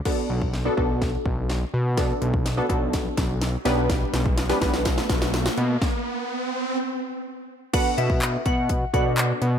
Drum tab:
CC |x---------------|----------------|----------------|----------------|
HH |----------------|x-x-x-x-x-x-x-x-|x-x-x-x-x-x-x-x-|----------------|
CP |----------------|----------------|----------------|----------------|
SD |o---o---o---o---|o---o---o-o-o-o-|o-o-oooooooooo--|o---------------|
BD |o--o--o-o-o-----|o--o--o-o-o-----|o--o--o-o-o-----|o---------------|

CC |x---------------|
HH |x-x-x-x-x-x-x-x-|
CP |----x-------x---|
SD |----------------|
BD |o--o--o-o-o-----|